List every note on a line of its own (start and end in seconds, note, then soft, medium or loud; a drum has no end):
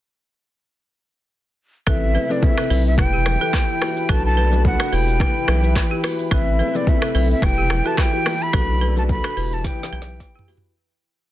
1.87 2.17 A1 loud
1.87 2.97 C3 medium
1.87 2.97 A3 medium
1.87 2.26 C4 medium
1.87 2.26 E4 medium
1.87 1.95 A4 loud
1.87 2.26 A4 medium
1.87 10.72 B4 medium
1.87 2.27 B4 loud
1.87 2.33 E5 medium
1.87 finger snap medium
1.87 kick loud
1.87 cross-stick medium
1.87 low conga medium
1.87 shaker medium
2.14 2.23 B4 medium
2.14 low bongo medium
2.14 shaker medium
2.30 2.67 C4 medium
2.30 2.67 E4 medium
2.30 2.67 A4 medium
2.30 2.67 B4 medium
2.30 2.45 D5 medium
2.30 low bongo medium
2.30 shaker medium
2.42 2.86 E5 medium
2.42 kick medium
2.42 high bongo medium
2.42 low conga medium
2.42 shaker medium
2.58 2.65 A4 medium
2.58 finger snap medium
2.58 cross-stick medium
2.70 2.99 B1 loud
2.70 2.96 C4 medium
2.70 2.96 E4 medium
2.70 2.96 A4 medium
2.70 2.79 B4 medium
2.70 2.96 B4 medium
2.70 open hi-hat medium
2.70 shaker medium
2.86 2.98 E5 medium
2.86 shaker medium
2.98 3.37 E1 loud
2.98 4.08 E3 medium
2.98 3.37 E4 medium
2.98 4.08 E4 medium
2.98 3.38 G4 medium
2.98 4.08 G4 medium
2.98 3.38 B4 loud
2.98 4.12 G5 loud
2.98 finger snap medium
2.98 kick loud
2.98 cross-stick medium
2.98 low conga medium
2.98 shaker medium
3.13 3.20 G4 medium
3.26 finger snap medium
3.26 cross-stick medium
3.26 low bongo medium
3.26 shaker medium
3.41 3.78 E4 medium
3.41 3.78 G4 medium
3.41 3.54 A4 medium
3.41 3.79 B4 medium
3.41 shaker medium
3.53 3.69 B4 medium
3.53 finger snap medium
3.53 kick medium
3.53 cross-stick loud
3.53 clap loud
3.53 high bongo medium
3.53 shaker loud
3.81 4.07 E4 medium
3.81 4.07 F#4 medium
3.81 4.07 G4 medium
3.81 4.07 B4 medium
3.81 finger snap medium
3.81 cross-stick loud
3.81 open hi-hat medium
3.81 high bongo medium
3.81 shaker medium
3.97 shaker medium
4.09 4.77 B1 loud
4.09 4.92 A3 medium
4.09 4.49 D4 medium
4.09 4.92 D4 medium
4.09 4.49 F#4 medium
4.09 4.18 A4 loud
4.09 4.49 A4 medium
4.09 4.49 B4 loud
4.09 4.25 A5 loud
4.09 finger snap medium
4.09 kick loud
4.09 cross-stick medium
4.09 low conga medium
4.09 shaker medium
4.26 4.63 A5 loud
4.37 4.46 B4 medium
4.37 low bongo medium
4.37 shaker medium
4.52 4.89 D4 medium
4.52 4.90 F#4 medium
4.52 4.90 A4 medium
4.52 4.90 B4 medium
4.52 low bongo medium
4.52 shaker medium
4.65 4.95 F#5 loud
4.65 kick medium
4.65 high bongo medium
4.65 low conga medium
4.65 shaker medium
4.80 4.87 A4 medium
4.80 finger snap medium
4.80 cross-stick medium
4.92 5.23 E1 medium
4.92 6.30 E3 medium
4.92 5.18 E4 medium
4.92 6.30 E4 medium
4.92 5.18 F#4 medium
4.92 5.18 G4 medium
4.92 6.30 G4 medium
4.92 5.01 B4 medium
4.92 5.18 B4 medium
4.92 6.04 G5 loud
4.92 open hi-hat medium
4.92 shaker medium
5.08 shaker medium
5.20 5.60 E4 medium
5.20 5.60 G4 medium
5.20 5.60 B4 loud
5.20 finger snap medium
5.20 kick loud
5.20 cross-stick medium
5.20 low conga medium
5.20 shaker medium
5.48 5.79 B1 medium
5.48 5.57 B4 medium
5.48 finger snap medium
5.48 cross-stick medium
5.48 low bongo medium
5.48 shaker medium
5.63 6.00 E4 medium
5.63 6.01 G4 medium
5.63 6.01 B4 medium
5.63 shaker medium
5.76 finger snap medium
5.76 kick loud
5.76 cross-stick loud
5.76 clap loud
5.76 high bongo medium
5.76 shaker loud
5.91 5.98 G4 medium
6.03 6.29 E4 medium
6.03 6.29 F#4 medium
6.03 6.29 G4 medium
6.03 6.12 B4 medium
6.03 6.30 B4 medium
6.03 finger snap medium
6.03 cross-stick medium
6.03 open hi-hat medium
6.03 high bongo medium
6.03 shaker soft
6.19 shaker medium
6.31 6.62 A1 loud
6.31 7.41 C3 medium
6.31 7.41 A3 medium
6.31 6.71 C4 loud
6.31 6.71 E4 medium
6.31 6.40 A4 loud
6.31 6.71 A4 medium
6.31 6.71 B4 loud
6.31 6.78 E5 loud
6.31 finger snap medium
6.31 kick loud
6.31 cross-stick medium
6.31 low conga medium
6.31 shaker medium
6.59 6.68 B4 medium
6.59 low bongo medium
6.59 shaker medium
6.74 7.12 C4 medium
6.74 7.12 E4 medium
6.74 7.12 A4 medium
6.74 7.12 B4 medium
6.74 6.90 D5 medium
6.74 low bongo medium
6.74 shaker medium
6.87 7.31 E5 medium
6.87 kick medium
6.87 high bongo medium
6.87 low conga medium
6.87 shaker medium
7.02 7.09 A4 medium
7.02 finger snap medium
7.02 cross-stick medium
7.15 7.34 B1 loud
7.15 7.40 C4 medium
7.15 7.41 E4 medium
7.15 7.41 A4 medium
7.15 7.23 B4 medium
7.15 7.41 B4 medium
7.15 open hi-hat medium
7.15 shaker medium
7.30 7.46 E5 medium
7.30 shaker medium
7.42 7.82 E1 loud
7.42 8.53 E3 medium
7.42 7.82 E4 medium
7.42 8.53 E4 medium
7.42 7.82 G4 medium
7.42 8.53 G4 medium
7.42 7.82 B4 loud
7.42 7.89 G5 loud
7.42 finger snap medium
7.42 kick loud
7.42 cross-stick medium
7.42 low conga medium
7.42 shaker medium
7.58 7.65 G4 medium
7.70 finger snap medium
7.70 cross-stick medium
7.70 low bongo medium
7.70 shaker medium
7.85 8.06 E4 medium
7.85 8.06 F#4 medium
7.85 8.06 G4 medium
7.85 7.92 A4 medium
7.85 8.06 B4 medium
7.85 7.99 A5 medium
7.85 shaker medium
7.98 8.14 B4 medium
7.98 8.44 G5 loud
7.98 finger snap medium
7.98 kick medium
7.98 cross-stick loud
7.98 clap loud
7.98 high bongo medium
7.98 shaker medium
8.13 8.33 E4 medium
8.13 8.34 F#4 medium
8.13 8.34 G4 medium
8.13 8.34 B4 medium
8.26 finger snap medium
8.26 cross-stick loud
8.26 open hi-hat medium
8.26 high bongo medium
8.26 shaker medium
8.41 8.97 B5 loud
8.41 shaker medium
8.53 9.21 B1 loud
8.53 9.36 A3 medium
8.53 8.93 D4 loud
8.53 9.36 D4 medium
8.53 8.93 F#4 medium
8.53 8.62 A4 loud
8.53 8.93 A4 medium
8.53 8.93 B4 loud
8.53 finger snap medium
8.53 kick loud
8.53 cross-stick medium
8.53 low conga medium
8.53 shaker medium
8.81 8.90 B4 medium
8.81 low bongo medium
8.81 shaker medium
8.96 9.34 D4 medium
8.96 9.34 F#4 medium
8.96 9.34 A4 medium
8.96 9.34 B4 medium
8.96 9.03 A5 loud
8.96 low bongo medium
8.96 shaker medium
9.09 9.55 B5 loud
9.09 kick medium
9.09 high bongo medium
9.09 low conga medium
9.09 shaker medium
9.24 9.31 A4 medium
9.24 finger snap medium
9.24 cross-stick medium
9.37 9.67 E1 loud
9.37 10.75 E3 medium
9.37 9.63 E4 medium
9.37 10.75 E4 medium
9.37 9.63 F#4 medium
9.37 9.63 G4 medium
9.37 10.75 G4 medium
9.37 9.45 B4 medium
9.37 9.63 B4 medium
9.37 open hi-hat medium
9.37 shaker medium
9.52 9.68 A5 loud
9.52 shaker medium
9.64 10.04 E4 medium
9.64 10.04 G4 medium
9.64 10.04 B4 loud
9.64 10.49 G5 medium
9.64 kick loud
9.64 snare medium
9.64 high bongo medium
9.64 low conga medium
9.64 shaker medium
9.83 snare medium
9.92 10.23 B1 medium
9.92 10.01 B4 medium
9.92 low bongo medium
9.92 shaker medium
10.02 snare medium
10.08 10.45 E4 medium
10.08 10.45 G4 medium
10.08 10.45 B4 medium
10.08 shaker medium
10.20 kick loud
10.20 snare medium
10.20 high bongo medium
10.20 shaker medium
10.36 10.42 G4 medium
10.36 floor tom loud
10.48 10.74 E4 medium
10.48 10.74 F#4 medium
10.48 10.74 G4 medium
10.48 10.57 B4 medium
10.48 10.74 B4 medium
10.48 open hi-hat medium
10.48 high bongo medium
10.48 shaker medium
10.57 floor tom loud
10.63 shaker medium